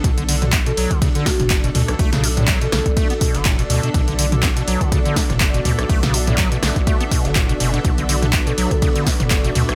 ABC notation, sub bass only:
X:1
M:4/4
L:1/16
Q:"Swing 16ths" 1/4=123
K:Bm
V:1 name="Sub bass" clef=bass
B,,,4- B,,, z B,,, z4 F,,,3 D,, z | B,,,4- B,,, z B,,, z4 F,,,3 D,, z | B,,,4- B,,, z B,,, z4 F,,,3 D,, z | B,,,4- B,,, z B,,, z4 F,,,3 F,,, z |
B,,,4- B,,, z B,,, z4 F,,,3 D,, z |]